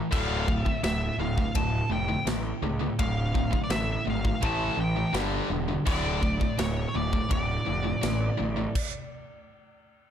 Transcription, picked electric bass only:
0.12 D1
0.83 D1
1.18 D1
1.55 D1
1.89 F1
2.25 A1
2.63 C#2
2.99 D1
3.70 A1
4.07 G#1
4.43 A1
4.77 A1
5.13 G1
5.50 E1
5.87 D1
6.59 D1
6.95 D1
7.31 D1
7.67 F1
8.03 A1
8.40 A1

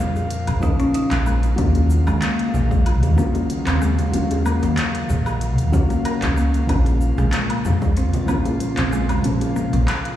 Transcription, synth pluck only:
0.63 D#4
0.80 C#4
0.95 D#4
1.11 A#3
1.26 G#3
1.58 A#3
2.07 G#3
2.22 A#3
2.54 G#3
2.86 F4
3.18 A#3
3.67 C4
3.82 G#3
4.46 A#3
5.73 F4
5.90 A#3
6.05 A#4
6.22 C#4
6.37 A#3
6.69 A#3
7.18 G#3
7.33 A#3
7.65 G#3
7.97 C4
8.29 A#3
8.78 C4
8.93 G#3
9.56 A#3

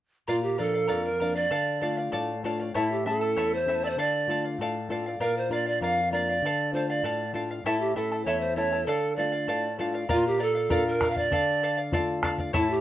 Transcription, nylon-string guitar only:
0.28 A#2
0.59 F3 A#3 D4
0.90 F2
1.20 F3 A#3 D4
1.51 D3
1.82 A3 D4 F4
2.13 A2 D5
2.44 A3 D4 F4 C#5
2.75 A2
3.06 A3 C#4 E4
3.36 E2
3.66 A3 C#4 E4
3.97 D3
4.27 A3 D4 F4
4.58 A2
4.89 A3 D4 F4
5.20 A#2
5.49 A#3 D4 F4
5.81 F2
6.11 A#3 D4 F4
6.42 D3
6.73 A3 D4 F4
7.03 A2
7.33 A3 D4 F4
7.64 A2
7.95 A3 C#4 E4
8.26 E2
8.57 A3 C#4 E4
8.87 D3
9.18 A3 D4 F4
9.48 A2
9.79 A3 D4 F4
10.09 A#2
10.69 A#3 D4 F4
11.31 D3
11.91 A3 D4 F4
12.53 A2

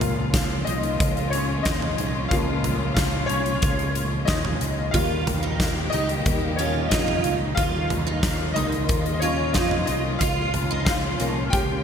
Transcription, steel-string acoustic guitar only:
4.94 F4
5.43 D#4
5.92 D#4
6.59 F4
6.91 F4
7.58 F4
8.07 D#4
8.56 D#4
9.22 F4
9.55 F4
10.21 F4
10.71 D#4
11.20 D#4

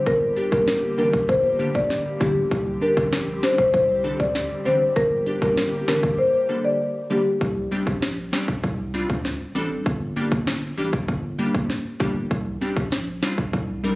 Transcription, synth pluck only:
0.36 D4 G4
0.52 D3 G3 A#3 D4 G4
0.98 D3 G3 A#3 D4 G4
1.59 D3 G3 A#3 D4 G4
2.20 D3 G3 A#3 D4 E4
2.81 D4 G4
2.97 D3 G3 C4 D4 G4
3.43 D3 G3 C4 D4 G4
4.04 D3 G3 C4 D4 A4
4.65 D3 G3 C4 D4 G4
5.26 D4 G4
5.42 D3 G3 A#3 D4 G4
5.88 D3 G3 A#3 D4 G4
6.49 D3 G3 A#3 D4 A4
7.10 D3 G3 A#3 D4 G4
7.71 G3 C4 D4 G4
8.32 G3 C4 D4 G4
8.94 G3 C4 D4 F4
9.55 G3 C4 D4 A4
10.16 G3 A#3 D4 G4
10.77 G3 A#3 D4 G4
11.39 G3 A#3 D4 G4
12.00 G3 A#3 D4 G4
12.61 G3 C4 D4 G4
13.22 G3 C4 D4 F4
13.84 G3 C4 D4 A#4

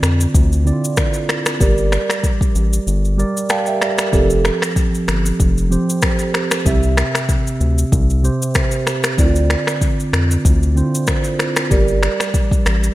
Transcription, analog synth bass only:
0.03 F2
0.34 D2
1.61 G1
2.55 A1
2.87 G1
4.13 F1
5.08 G1
5.40 F1
6.66 C2
7.60 D2
7.92 C2
9.18 D2
10.13 F2
10.45 D2
11.71 G1
12.66 A1

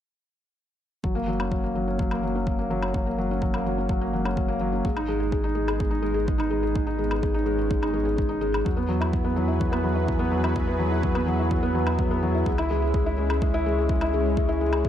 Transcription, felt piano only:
1.04 F#3
1.15 A#3
1.27 F#3
1.40 C#4
1.51 F#3
1.64 A#3
1.75 F#3
1.88 C#4
2.00 F#3
2.12 A#3
2.23 F#3
2.35 C#4
2.47 F#3
2.59 A#3
2.70 F#3
2.83 C#4
2.94 F#3
3.07 A#3
3.18 F#3
3.31 C#4
3.42 F#3
3.54 A#3
3.66 F#3
3.78 C#4
3.91 F#3
4.01 A#3
4.13 F#3
4.25 C#4
4.37 F#3
4.48 A#3
4.61 F#3
4.73 C#4
4.85 G#3
4.96 D#4
5.08 G#3
5.20 G#4
5.32 G#3
5.44 D#4
5.55 G#3
5.68 G#4
5.79 G#3
5.91 D#4
6.02 G#3
6.14 G#4
6.27 G#3
6.38 D#4
6.51 G#3
6.63 G#4
6.75 G#3
6.87 D#4
6.99 G#3
7.11 G#4
7.22 G#3
7.34 D#4
7.46 G#3
7.59 G#4
7.70 G#3
7.82 D#4
7.94 G#3
8.05 G#4
8.16 G#3
8.29 D#4
8.41 G#3
8.52 G#4
8.65 F#3
8.77 B3
8.89 F#3
9.00 E4
9.13 F#3
9.25 B3
9.36 F#3
9.48 E4
9.60 F#3
9.72 B3
9.84 F#3
9.95 E4
10.07 F#3
10.19 B3
10.31 F#3
10.44 E4
10.55 F#3
10.67 B3
10.79 F#3
10.92 E4
11.02 F#3
11.15 B3
11.27 F#3
11.39 E4
11.51 F#3
11.63 B3
11.75 F#3
11.87 E4
11.99 F#3
12.11 B3
12.23 F#3
12.35 E4
12.46 G#3
12.59 E4
12.70 G#3
12.82 G#4
12.94 G#3
13.06 E4
13.18 G#3
13.29 G#4
13.42 G#3
13.54 E4
13.66 G#3
13.79 G#4
13.90 G#3
14.02 E4
14.14 G#3
14.26 G#4
14.38 G#3
14.49 E4
14.61 G#3
14.73 G#4
14.84 G#3

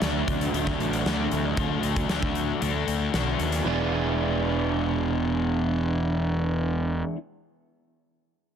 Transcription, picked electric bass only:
0.02 D2
0.28 D2
0.54 D2
0.80 A1
1.05 D2
1.32 D2
1.57 D2
1.84 D2
2.10 D2
2.62 D2
2.88 D2
3.14 B1
3.40 D#2
3.66 E1

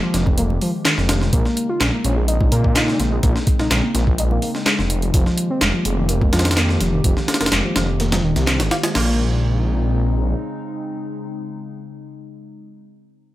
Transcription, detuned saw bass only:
0.14 F1
0.98 F1
1.33 A#1
1.81 A#1
2.05 A#1
2.52 A#2
3.00 A#1
3.23 A#1
3.60 A#1
3.71 A#1
3.95 A#1
4.79 F1
5.14 F1
5.62 F1
5.85 F1
6.33 F2
6.81 F1
7.04 F1
7.41 F1
7.52 F1
7.76 F1
8.24 D#1
8.36 C2
8.60 G#1
8.95 A#1

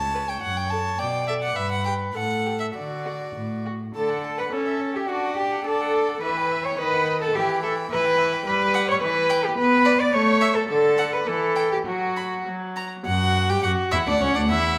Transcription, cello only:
Already playing: C#2
0.43 F#2
0.99 B2
1.56 G2
2.15 A2
2.75 D3
3.36 A2
3.95 A4
4.39 B4
4.52 A4
4.96 G4
5.09 F#4
5.37 G4
5.66 A4
6.22 B4
6.65 C#5
6.79 B4
7.22 A4
7.36 G4
7.63 A4
7.91 B4
8.46 B4
8.89 C#5
9.02 B4
9.45 G4
9.58 B4
10.01 D5
10.13 C#5
10.56 A4
10.69 A4
11.13 B4
11.27 A4
11.72 G4
11.86 F#4
13.06 F#2
13.50 G2
13.64 F#2
13.93 E2
14.07 D2
14.21 C#2
14.36 D2
14.50 E2

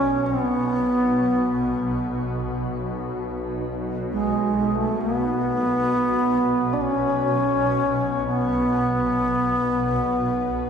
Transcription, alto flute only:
Already playing: C#4
0.26 B3
4.12 G#3
4.75 A3
5.01 B3
6.73 D4
6.82 C#4
8.27 B3

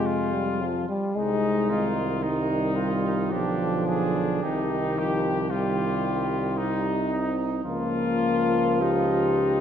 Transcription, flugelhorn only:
Already playing: F4
1.15 D#4
2.22 D#4
2.76 F4
3.31 G4
3.87 G#4
4.42 G4
5.49 G4
6.57 D#4
7.64 F4

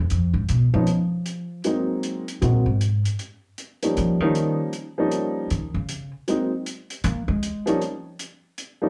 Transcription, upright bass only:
Already playing: E2
0.11 F2
0.34 G#2
0.49 B2
0.74 F3
2.42 A#2
2.66 G#2
3.98 F3
4.20 D#3
5.51 D#3
5.74 C#3
7.04 A#3
7.28 G#3

